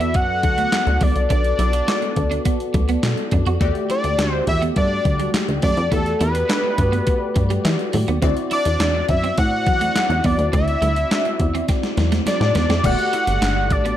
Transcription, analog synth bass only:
0.00 0.16 E2 medium
0.15 0.45 F#2 medium
0.44 0.67 D2 medium
0.87 0.98 D2 medium
1.01 1.13 C#2 loud
1.16 1.27 C2 medium
1.30 1.53 B1 loud
1.59 1.82 B1 medium
2.17 2.40 D2 medium
2.74 2.98 D2 medium
3.03 3.15 B2 medium
3.32 3.44 F#2 medium
3.46 3.58 F2 medium
3.61 3.72 E2 loud
4.04 4.16 D2 medium
4.19 4.42 D2 medium
4.48 4.71 E2 medium
4.76 5.00 G2 medium
5.05 5.28 D2 medium
5.48 5.60 D2 medium
5.63 5.75 F#2 loud
5.77 5.89 F2 loud
5.92 6.15 E2 loud
6.21 6.44 E2 loud
6.78 7.01 G2 medium
7.36 7.59 G2 medium
7.65 7.76 E3 loud
7.94 8.05 A2 medium
8.08 8.20 D#2 medium
8.22 8.34 D2 loud
8.66 8.77 E2 medium
8.80 9.03 E2 medium
9.09 9.32 F#2 medium
9.38 9.68 A2 medium
9.67 9.90 E2 medium
10.09 10.21 E2 medium
10.25 10.36 E2 medium
10.38 10.50 D#2 medium
10.53 10.76 D2 loud
10.82 11.05 D2 medium
11.40 11.63 E2 medium
11.97 12.21 E2 medium
12.41 12.52 A2 medium
12.55 12.67 E2 medium
12.69 12.81 F2 medium
12.84 12.96 E1 loud
13.27 13.39 G1 medium
13.42 13.72 G1 loud
13.71 13.94 A1 medium

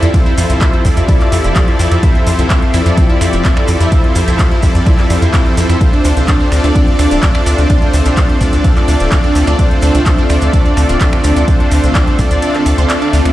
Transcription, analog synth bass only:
0.03 0.10 F2 medium
0.38 0.46 F2 medium
0.50 0.58 C2 medium
0.85 0.93 F2 medium
0.97 1.05 F2 medium
1.32 1.40 F2 loud
1.44 1.52 F1 medium
1.79 1.88 F2 loud
1.92 1.99 F2 medium
2.27 2.35 F2 loud
2.39 2.47 C2 medium
2.74 2.82 F2 medium
2.86 2.94 F2 medium
3.21 3.29 F2 loud
3.33 3.41 F1 medium
3.68 3.77 F2 medium
3.81 3.88 F2 medium
4.16 4.24 F2 loud
4.28 4.35 C2 medium
4.63 4.71 F2 medium
4.75 4.83 F2 medium
5.10 5.18 F2 loud
5.22 5.30 F2 medium
5.57 5.65 F2 medium
5.70 5.77 F2 medium
6.05 6.13 D2 loud
6.17 6.24 C2 medium
6.52 6.60 D2 loud
6.64 6.72 D2 medium
6.99 7.07 D2 loud
7.11 7.19 D1 medium
7.46 7.54 D2 medium
7.58 7.66 D2 medium
7.94 8.02 D2 loud
8.06 8.13 C2 medium
8.41 8.49 D2 loud
8.53 8.61 D2 medium
8.88 8.96 D2 medium
9.00 9.08 D1 medium
9.35 9.43 D2 medium
9.47 9.55 D2 medium
9.83 9.91 D2 loud
9.95 10.02 C2 medium
10.30 10.38 D2 loud
10.42 10.50 D2 medium
10.77 10.85 D2 loud
10.89 10.97 D1 medium
11.24 11.32 D2 loud
11.36 11.44 D2 medium
11.72 11.80 D2 loud
11.84 11.91 C2 medium
12.19 12.27 D2 loud
12.31 12.39 D2 medium
12.66 12.74 D2 loud
12.78 12.86 D2 medium
13.13 13.21 D2 loud
13.25 13.33 D2 medium

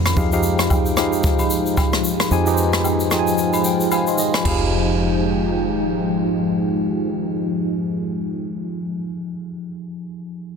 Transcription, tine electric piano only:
0.17 0.29 F3 medium
0.17 0.29 D#4 medium
0.17 0.29 G4 medium
0.17 0.30 G#4 medium
0.17 0.30 F5 loud
0.32 0.86 F3 medium
0.32 0.86 D#4 medium
0.32 0.86 G4 medium
0.32 0.86 G#4 medium
0.32 0.86 F5 loud
0.97 1.84 F3 medium
0.97 1.84 D#4 medium
0.97 1.84 G4 medium
0.97 1.84 G#4 medium
0.97 1.84 F5 medium
2.31 2.43 F3 medium
2.31 2.44 D#4 medium
2.31 2.44 G4 medium
2.31 2.44 G#4 medium
2.31 2.44 G#5 loud
2.47 3.00 F3 medium
2.47 3.00 D#4 medium
2.47 3.00 G4 medium
2.47 3.01 G#4 medium
2.47 2.53 B4 medium
2.54 3.04 C5 loud
3.11 3.98 F3 medium
3.11 3.98 D#4 medium
3.11 3.98 G#4 medium
3.11 3.19 G5 medium
3.11 3.37 C6 medium
3.19 3.38 G#5 medium
3.39 3.63 G#5 medium
3.65 3.90 G5 medium
3.92 4.07 C5 medium
3.92 4.17 F5 medium
3.92 4.07 G#5 medium
4.08 4.18 D#5 medium
4.08 4.33 C6 medium
4.19 4.44 D#5 medium
4.35 4.60 C5 medium
4.35 4.60 G#5 medium
4.44 8.88 F3 medium
4.44 8.89 D#4 medium
4.44 8.90 G4 medium
4.44 8.91 G#4 medium
4.48 8.93 F5 medium

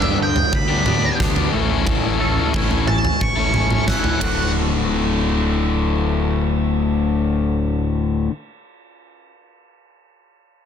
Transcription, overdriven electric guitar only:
0.00 0.36 G2 medium
0.00 0.36 D3 medium
0.00 0.19 B3 medium
0.00 0.19 D4 medium
0.00 0.19 G4 medium
0.05 0.18 G3 medium
0.19 muted overdriven electric guitar stroke soft
0.68 0.84 G3 medium
0.68 0.85 B3 medium
0.68 0.86 D4 medium
0.68 0.87 G4 medium
0.85 1.18 G3 medium
0.85 1.19 B3 medium
0.85 1.19 D4 medium
0.85 1.20 G4 medium
1.18 1.50 G2 medium
1.18 1.51 D3 medium
1.18 1.37 G3 medium
1.18 1.36 B3 medium
1.18 1.35 D4 medium
1.18 1.34 G4 loud
1.35 1.52 G3 medium
1.35 1.51 B3 soft
1.35 1.51 D4 medium
1.35 1.50 G4 medium
1.51 1.83 A2 medium
1.51 1.84 E3 medium
1.51 1.71 A3 medium
1.51 1.70 C#4 medium
1.51 1.69 E4 medium
1.51 1.68 A4 medium
1.69 1.85 A3 medium
1.69 1.86 C#4 medium
1.69 1.87 E4 medium
1.69 1.87 A4 medium
1.84 2.51 A2 medium
1.84 2.52 E3 medium
1.84 2.17 A3 medium
1.84 2.19 C#4 medium
1.84 2.20 E4 medium
1.84 2.20 A4 medium
2.19 2.53 A3 medium
2.19 2.53 C#4 medium
2.19 2.54 E4 medium
2.19 2.54 A4 medium
2.52 3.03 A2 medium
2.52 3.03 E3 medium
2.52 2.72 A3 medium
2.52 2.71 C#4 medium
2.52 2.70 E4 medium
2.52 2.68 A4 medium
2.69 2.86 A3 soft
2.69 2.86 C#4 soft
2.69 2.86 E4 medium
2.69 2.86 A4 medium
2.87 muted overdriven electric guitar stroke soft
3.36 3.51 A3 soft
3.36 3.53 C#4 medium
3.36 3.53 E4 medium
3.36 3.54 A4 medium
3.52 3.86 A3 medium
3.52 3.87 C#4 medium
3.52 3.87 E4 medium
3.52 3.88 A4 medium
3.85 4.18 A2 medium
3.85 4.20 E3 medium
3.85 4.04 A3 medium
3.85 4.03 C#4 medium
3.85 4.02 E4 medium
3.85 4.01 A4 medium
4.02 4.21 A3 soft
4.02 4.21 C#4 soft
4.02 4.20 E4 medium
4.02 4.20 A4 medium
4.18 8.27 D2 medium
4.18 8.29 A2 medium
4.22 8.31 D3 medium

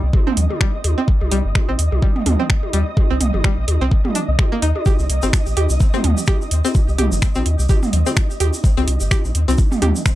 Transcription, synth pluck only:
0.27 0.30 C4 loud
0.61 0.69 G3 loud
0.98 1.00 C4 loud
1.32 1.40 G3 loud
1.69 1.71 C4 loud
2.02 2.11 G3 loud
2.39 2.42 C4 loud
2.73 2.82 G3 loud
3.10 3.13 C4 loud
3.44 3.53 G3 loud
3.81 3.84 C4 loud
4.15 4.19 D4 medium
4.52 4.59 A#3 loud
4.62 4.68 D#4 medium
4.86 4.95 G4 medium
5.23 5.26 C4 loud
5.57 5.65 G4 medium
5.94 5.96 C4 loud
6.28 6.36 G4 medium
6.65 6.67 C4 loud
6.98 7.07 G4 medium
7.35 7.38 C4 loud
7.69 7.78 G4 medium
8.06 8.09 C4 loud
8.40 8.49 G4 medium
8.77 8.80 C4 loud
9.11 9.20 G4 medium
9.48 9.51 C4 loud
9.82 9.91 G4 medium

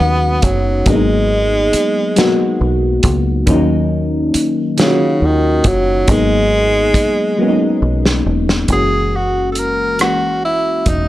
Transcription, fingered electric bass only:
0.00 0.39 D#2 medium
0.44 0.83 F#1 medium
0.87 1.69 G#1 loud
1.74 muted fingered electric bass stroke medium
2.61 3.00 B1 medium
3.04 3.43 C#2 medium
3.48 4.30 D#2 loud
4.35 muted fingered electric bass stroke medium
5.22 5.61 D#2 medium
5.65 6.04 F#1 medium
6.09 6.91 G#1 loud
6.95 muted fingered electric bass stroke soft
7.82 8.22 B1 medium
8.26 8.65 E1 medium
8.69 10.82 F#1 medium
10.87 11.08 E1 medium

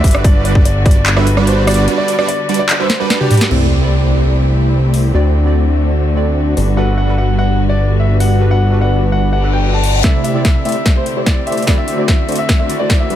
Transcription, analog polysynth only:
0.04 0.22 G3 medium
0.04 0.22 D4 medium
0.04 0.22 F#4 medium
0.04 0.22 B4 medium
0.04 0.22 D5 loud
0.24 0.53 G3 medium
0.24 0.53 D4 medium
0.24 0.53 F#4 medium
0.24 0.53 B4 medium
0.24 0.53 D5 medium
0.55 0.66 G3 medium
0.55 0.66 D4 medium
0.55 0.66 F#4 medium
0.55 0.66 B4 medium
0.55 0.66 D5 loud
0.85 0.96 G3 medium
0.85 0.97 D4 medium
0.85 0.97 F#4 medium
0.85 0.96 B4 medium
0.85 0.96 D5 medium
1.16 1.27 G3 medium
1.16 1.27 D4 medium
1.16 1.27 F#4 medium
1.16 1.27 B4 medium
1.16 1.27 E5 medium
1.37 1.65 G3 medium
1.37 1.65 D4 medium
1.37 1.65 F#4 medium
1.37 1.65 B4 medium
1.37 1.65 D5 medium
1.67 1.85 G3 medium
1.67 1.85 D4 medium
1.67 1.85 F#4 medium
1.67 1.85 B4 medium
1.67 1.85 D5 loud
1.87 2.16 G3 medium
1.87 2.16 D4 medium
1.87 2.16 F#4 medium
1.87 2.16 B4 medium
1.87 2.16 D5 medium
2.18 2.29 G3 loud
2.18 2.29 D4 medium
2.18 2.29 F#4 medium
2.18 2.29 B4 medium
2.18 2.29 D5 loud
2.49 2.60 G3 medium
2.49 2.60 D4 medium
2.49 2.60 F#4 medium
2.49 2.60 B4 medium
2.49 2.60 D5 loud
2.80 2.90 G3 medium
2.80 2.90 D4 medium
2.80 2.90 F#4 medium
2.80 2.90 B4 medium
2.80 2.90 E5 medium
3.00 3.18 G3 medium
3.00 3.18 D4 medium
3.00 3.18 F#4 medium
3.00 3.18 B4 medium
3.00 3.18 D5 medium
3.21 3.49 G3 medium
3.21 3.49 D4 medium
3.21 3.49 F#4 medium
3.21 3.49 B4 medium
3.21 3.49 D5 medium
3.51 5.12 A3 medium
3.51 5.12 E4 medium
3.51 5.12 G4 medium
3.51 5.12 C5 medium
3.51 5.12 D5 medium
5.14 6.55 A3 medium
5.14 6.55 D4 medium
5.14 6.55 F#4 medium
5.14 6.55 C5 medium
5.14 6.55 D5 medium
6.57 9.81 G3 medium
6.57 9.81 D4 medium
6.57 9.81 F#4 medium
6.57 9.81 B4 medium
6.57 9.81 D5 medium
10.04 10.32 A3 medium
10.04 10.32 E4 medium
10.04 10.32 G4 medium
10.04 10.32 C5 medium
10.04 10.32 D5 medium
10.35 10.45 A3 medium
10.35 10.45 E4 medium
10.35 10.45 G4 medium
10.35 10.45 C5 medium
10.35 10.45 D5 loud
10.65 10.76 A3 medium
10.65 10.76 E4 medium
10.65 10.76 G4 medium
10.65 10.76 C5 medium
10.65 10.76 D5 medium
10.96 11.06 A3 medium
10.96 11.06 E4 medium
10.96 11.06 G4 medium
10.96 11.06 C5 medium
10.96 11.06 E5 medium
11.16 11.44 A3 medium
11.16 11.44 E4 medium
11.16 11.44 G4 medium
11.16 11.44 C5 medium
11.16 11.44 D5 medium
11.47 11.65 A3 medium
11.47 11.65 E4 medium
11.47 11.65 G4 medium
11.47 11.65 C5 medium
11.47 11.65 D5 loud
11.67 11.96 A3 medium
11.67 11.96 D4 medium
11.67 11.96 F#4 medium
11.67 11.96 C5 medium
11.67 11.96 D5 medium
11.98 12.09 A3 medium
11.98 12.08 D4 medium
11.98 12.09 F#4 medium
11.98 12.09 C5 medium
11.98 12.09 D5 loud
12.28 12.39 A3 medium
12.28 12.39 D4 medium
12.28 12.39 F#4 medium
12.28 12.39 C5 medium
12.28 12.39 D5 medium
12.59 12.70 A3 medium
12.59 12.70 D4 medium
12.59 12.70 F#4 medium
12.59 12.70 C5 medium
12.59 12.70 E5 medium
12.80 13.08 A3 medium
12.80 13.08 D4 medium
12.80 13.08 F#4 medium
12.80 13.08 C5 medium
12.80 13.08 D5 medium
13.10 13.15 G3 medium
13.10 13.15 D4 medium
13.10 13.15 F#4 medium
13.10 13.15 B4 medium
13.10 13.15 D5 loud

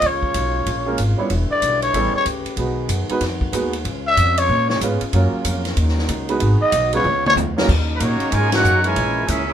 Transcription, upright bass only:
0.02 0.33 C#2 medium
0.34 0.65 B1 medium
0.66 0.97 A#1 loud
0.98 1.17 G#1 medium
1.30 1.49 E1 medium
1.62 1.93 B1 medium
1.94 2.13 A1 medium
2.25 2.44 C#2 medium
2.45 muted upright bass stroke soft
2.57 2.88 B1 medium
2.89 3.08 F#2 medium
3.09 muted upright bass stroke soft
3.21 3.52 F2 medium
3.52 3.84 D#2 medium
3.85 4.16 C#2 loud
4.17 4.48 F2 loud
4.49 4.80 A#2 medium
4.81 5.00 G#2 medium
5.01 muted upright bass stroke soft
5.13 5.32 F#2 loud
5.33 muted upright bass stroke soft
5.45 5.76 F2 loud
5.77 6.08 D#2 medium
6.09 6.40 C#2 medium
6.40 6.59 G#1 medium
6.61 muted upright bass stroke soft
6.72 7.03 B1 loud
7.04 7.35 C#2 loud
7.36 7.67 D2 loud
7.68 7.99 D#2 medium
8.00 8.19 A#2 loud
8.21 muted upright bass stroke soft
8.32 8.63 G#2 medium
8.64 8.95 F#2 medium
8.96 9.27 A#1 medium
9.28 9.53 C#2 medium

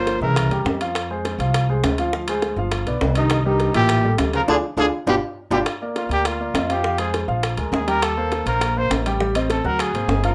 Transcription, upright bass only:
0.00 0.16 G1 medium
0.20 0.48 C2 medium
0.50 0.64 E2 medium
0.65 1.33 F2 medium
1.38 1.80 C2 medium
1.83 2.52 D2 medium
2.56 2.84 G1 medium
2.86 3.00 B1 medium
3.01 3.69 C2 medium
3.74 4.16 A1 medium
4.19 4.46 D2 medium
4.48 4.59 D2 medium
4.77 4.88 D2 medium
5.07 5.18 G1 medium
5.50 5.62 G1 medium
6.09 6.51 D2 medium
6.54 7.23 F2 loud
7.28 7.56 A#1 medium
7.57 7.71 D2 medium
7.72 8.41 D#2 medium
8.46 8.87 A#1 medium
8.90 9.59 A1 medium
9.64 9.92 D2 loud
9.94 10.08 G#1 medium
10.08 10.35 G1 medium

